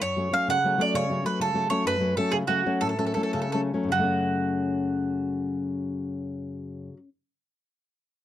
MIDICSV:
0, 0, Header, 1, 3, 480
1, 0, Start_track
1, 0, Time_signature, 6, 3, 24, 8
1, 0, Key_signature, 3, "minor"
1, 0, Tempo, 310078
1, 3840, Tempo, 340522
1, 4800, Tempo, 383877
1, 5760, Tempo, 404585
1, 10884, End_track
2, 0, Start_track
2, 0, Title_t, "Mandolin"
2, 0, Program_c, 0, 25
2, 23, Note_on_c, 0, 73, 105
2, 515, Note_off_c, 0, 73, 0
2, 520, Note_on_c, 0, 77, 94
2, 749, Note_off_c, 0, 77, 0
2, 772, Note_on_c, 0, 78, 110
2, 1250, Note_off_c, 0, 78, 0
2, 1255, Note_on_c, 0, 74, 101
2, 1455, Note_off_c, 0, 74, 0
2, 1474, Note_on_c, 0, 73, 113
2, 1910, Note_off_c, 0, 73, 0
2, 1949, Note_on_c, 0, 71, 92
2, 2157, Note_off_c, 0, 71, 0
2, 2188, Note_on_c, 0, 69, 96
2, 2621, Note_off_c, 0, 69, 0
2, 2630, Note_on_c, 0, 73, 94
2, 2875, Note_off_c, 0, 73, 0
2, 2893, Note_on_c, 0, 71, 106
2, 3333, Note_off_c, 0, 71, 0
2, 3358, Note_on_c, 0, 69, 80
2, 3584, Note_on_c, 0, 68, 89
2, 3602, Note_off_c, 0, 69, 0
2, 3661, Note_off_c, 0, 68, 0
2, 3830, Note_on_c, 0, 66, 85
2, 4301, Note_on_c, 0, 69, 89
2, 4311, Note_off_c, 0, 66, 0
2, 4400, Note_off_c, 0, 69, 0
2, 4417, Note_on_c, 0, 69, 56
2, 4535, Note_off_c, 0, 69, 0
2, 4554, Note_on_c, 0, 69, 64
2, 4646, Note_off_c, 0, 69, 0
2, 4663, Note_on_c, 0, 69, 44
2, 4752, Note_off_c, 0, 69, 0
2, 4769, Note_on_c, 0, 69, 59
2, 4872, Note_off_c, 0, 69, 0
2, 4887, Note_on_c, 0, 69, 52
2, 4990, Note_off_c, 0, 69, 0
2, 5011, Note_on_c, 0, 69, 58
2, 5103, Note_off_c, 0, 69, 0
2, 5118, Note_on_c, 0, 69, 51
2, 5226, Note_off_c, 0, 69, 0
2, 5251, Note_on_c, 0, 69, 67
2, 5350, Note_off_c, 0, 69, 0
2, 5746, Note_on_c, 0, 66, 87
2, 9361, Note_off_c, 0, 66, 0
2, 10884, End_track
3, 0, Start_track
3, 0, Title_t, "Nylon-string guitar"
3, 0, Program_c, 1, 24
3, 15, Note_on_c, 1, 42, 68
3, 256, Note_on_c, 1, 54, 43
3, 266, Note_on_c, 1, 57, 37
3, 274, Note_on_c, 1, 61, 57
3, 464, Note_off_c, 1, 54, 0
3, 480, Note_off_c, 1, 57, 0
3, 483, Note_off_c, 1, 42, 0
3, 483, Note_on_c, 1, 54, 41
3, 485, Note_off_c, 1, 61, 0
3, 497, Note_on_c, 1, 57, 46
3, 506, Note_on_c, 1, 61, 56
3, 745, Note_on_c, 1, 49, 71
3, 876, Note_off_c, 1, 54, 0
3, 885, Note_off_c, 1, 57, 0
3, 889, Note_off_c, 1, 61, 0
3, 995, Note_on_c, 1, 54, 50
3, 1005, Note_on_c, 1, 57, 39
3, 1015, Note_on_c, 1, 61, 57
3, 1189, Note_off_c, 1, 54, 0
3, 1198, Note_off_c, 1, 57, 0
3, 1207, Note_on_c, 1, 54, 56
3, 1209, Note_off_c, 1, 49, 0
3, 1209, Note_off_c, 1, 61, 0
3, 1217, Note_on_c, 1, 57, 53
3, 1228, Note_on_c, 1, 61, 57
3, 1459, Note_on_c, 1, 49, 67
3, 1597, Note_off_c, 1, 54, 0
3, 1602, Note_off_c, 1, 57, 0
3, 1609, Note_off_c, 1, 61, 0
3, 1700, Note_on_c, 1, 54, 48
3, 1707, Note_on_c, 1, 57, 37
3, 1719, Note_on_c, 1, 61, 52
3, 1900, Note_off_c, 1, 54, 0
3, 1902, Note_off_c, 1, 57, 0
3, 1908, Note_off_c, 1, 61, 0
3, 1917, Note_on_c, 1, 54, 51
3, 1921, Note_off_c, 1, 49, 0
3, 1924, Note_on_c, 1, 57, 42
3, 1926, Note_on_c, 1, 61, 43
3, 2163, Note_on_c, 1, 49, 65
3, 2306, Note_off_c, 1, 54, 0
3, 2307, Note_off_c, 1, 57, 0
3, 2311, Note_off_c, 1, 61, 0
3, 2388, Note_on_c, 1, 54, 52
3, 2397, Note_on_c, 1, 57, 42
3, 2405, Note_on_c, 1, 61, 54
3, 2611, Note_off_c, 1, 54, 0
3, 2614, Note_off_c, 1, 57, 0
3, 2616, Note_off_c, 1, 61, 0
3, 2627, Note_off_c, 1, 49, 0
3, 2627, Note_on_c, 1, 54, 53
3, 2634, Note_on_c, 1, 57, 50
3, 2639, Note_on_c, 1, 61, 55
3, 2866, Note_on_c, 1, 42, 58
3, 3018, Note_off_c, 1, 54, 0
3, 3020, Note_off_c, 1, 57, 0
3, 3021, Note_off_c, 1, 61, 0
3, 3100, Note_on_c, 1, 54, 45
3, 3103, Note_on_c, 1, 57, 42
3, 3114, Note_on_c, 1, 61, 53
3, 3338, Note_off_c, 1, 42, 0
3, 3338, Note_off_c, 1, 54, 0
3, 3352, Note_off_c, 1, 57, 0
3, 3357, Note_on_c, 1, 54, 54
3, 3363, Note_off_c, 1, 61, 0
3, 3370, Note_on_c, 1, 57, 50
3, 3382, Note_on_c, 1, 61, 52
3, 3597, Note_on_c, 1, 49, 67
3, 3751, Note_off_c, 1, 54, 0
3, 3759, Note_off_c, 1, 57, 0
3, 3766, Note_off_c, 1, 61, 0
3, 3845, Note_on_c, 1, 54, 50
3, 3848, Note_on_c, 1, 57, 48
3, 3856, Note_on_c, 1, 61, 54
3, 4062, Note_off_c, 1, 49, 0
3, 4077, Note_off_c, 1, 54, 0
3, 4077, Note_off_c, 1, 57, 0
3, 4079, Note_off_c, 1, 61, 0
3, 4093, Note_on_c, 1, 54, 55
3, 4096, Note_on_c, 1, 57, 51
3, 4100, Note_on_c, 1, 61, 66
3, 4309, Note_on_c, 1, 45, 63
3, 4474, Note_off_c, 1, 54, 0
3, 4474, Note_off_c, 1, 57, 0
3, 4475, Note_off_c, 1, 61, 0
3, 4549, Note_on_c, 1, 54, 46
3, 4558, Note_on_c, 1, 57, 45
3, 4558, Note_on_c, 1, 61, 48
3, 4780, Note_off_c, 1, 54, 0
3, 4784, Note_off_c, 1, 57, 0
3, 4786, Note_off_c, 1, 61, 0
3, 4790, Note_off_c, 1, 45, 0
3, 4794, Note_on_c, 1, 54, 39
3, 4803, Note_on_c, 1, 61, 49
3, 4804, Note_on_c, 1, 57, 47
3, 5021, Note_on_c, 1, 49, 66
3, 5175, Note_off_c, 1, 54, 0
3, 5177, Note_off_c, 1, 57, 0
3, 5178, Note_off_c, 1, 61, 0
3, 5274, Note_on_c, 1, 54, 43
3, 5276, Note_on_c, 1, 57, 45
3, 5283, Note_on_c, 1, 61, 53
3, 5494, Note_off_c, 1, 49, 0
3, 5504, Note_off_c, 1, 54, 0
3, 5508, Note_off_c, 1, 57, 0
3, 5510, Note_off_c, 1, 61, 0
3, 5518, Note_on_c, 1, 54, 51
3, 5525, Note_on_c, 1, 57, 52
3, 5525, Note_on_c, 1, 61, 58
3, 5642, Note_on_c, 1, 42, 53
3, 5705, Note_on_c, 1, 49, 52
3, 5714, Note_off_c, 1, 54, 0
3, 5716, Note_off_c, 1, 57, 0
3, 5718, Note_off_c, 1, 61, 0
3, 5771, Note_on_c, 1, 54, 49
3, 5830, Note_on_c, 1, 57, 55
3, 5888, Note_on_c, 1, 61, 54
3, 9262, Note_off_c, 1, 42, 0
3, 9322, Note_off_c, 1, 49, 0
3, 9385, Note_off_c, 1, 54, 0
3, 9444, Note_off_c, 1, 57, 0
3, 9502, Note_off_c, 1, 61, 0
3, 10884, End_track
0, 0, End_of_file